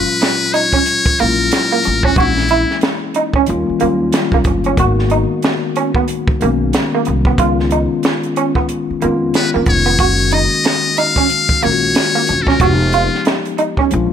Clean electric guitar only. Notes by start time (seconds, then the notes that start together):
0.22 muted clean electric guitar stroke
0.54 D#4
0.74 C#4
1.20 A#3
1.72 A#3
1.85 muted clean electric guitar stroke
2.05 C#4
2.18 F#4
2.51 E4
2.84 muted clean electric guitar stroke
3.16 D#4
3.36 C#4
3.81 A#3
4.34 A#3
4.47 muted clean electric guitar stroke
4.66 C#4
4.80 F#4
5.11 D#4
5.45 muted clean electric guitar stroke
5.77 C#4
5.96 B3
6.42 A#3
6.95 A#3
7.07 muted clean electric guitar stroke
7.27 B3
7.39 F4
7.72 D#4
8.05 muted clean electric guitar stroke
8.37 C#4
8.56 B3
9.02 A#3
9.54 A#3
9.67 muted clean electric guitar stroke
9.86 B3
10.00 F#4
10.32 D#4
10.65 muted clean electric guitar stroke
10.98 D#4
11.18 C#4
11.63 A#3
12.15 A#3
12.29 muted clean electric guitar stroke
12.48 C#4
12.61 F#4
12.94 F4
13.27 muted clean electric guitar stroke
13.59 D#4
13.79 C#4